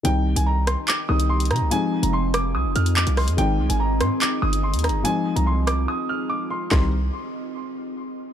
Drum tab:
HH |x-----x-----x---x-----x---xxxx--|x-----x-----x-------x-x---x-o-x-|x-----x-----x---x-----x---xxxx--|x-----x-----x-------------------|
CP |----------------x---------------|------------------------x-------|----------------x---------------|--------------------------------|
SD |------------r---------------r---|------------r---------------r---|------------r---------------r---|------------r-------------------|
BD |--------------------------------|--------------------------------|--------------------------------|--------------------------------|

HH |--------------------------------|
CP |x-------------------------------|
SD |o-------------------------------|
BD |o-------------------------------|